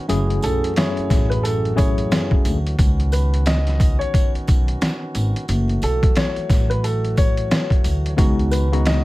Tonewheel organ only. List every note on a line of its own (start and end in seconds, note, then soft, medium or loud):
0.09 2.76 E3 medium
0.09 2.76 F#3 medium
0.09 2.76 A3 medium
0.09 8.14 F#4 medium
2.79 5.46 D#3 medium
2.79 5.46 B3 medium
2.79 5.46 C#4 medium
5.48 8.15 E3 medium
5.48 8.15 F#3 medium
5.48 8.15 A3 medium
8.18 9.04 D#3 medium
8.18 9.04 B3 medium
8.18 9.04 C#4 medium
8.18 9.04 F#4 medium